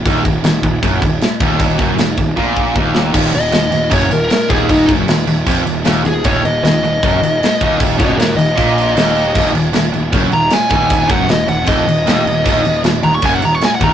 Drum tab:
CC |xxxxxxxx|xxxx----|xxxxxxxx|xxxxxxxx|
SD |--o---o-|--o----o|--o---o-|--o---o-|
BD |oo-ooo-o|oo-oooo-|o---o--o|oo--o---|

CC |xxxxxxxx|xxxxxxxx|xxxxxxxx|xxxxxxxx|
SD |--o---o-|--o---o-|--o---o-|--o---o-|
BD |o---o--o|oo--o---|o---o--o|oo--o---|

CC |xxxxxxxx|
SD |--o---o-|
BD |o---o--o|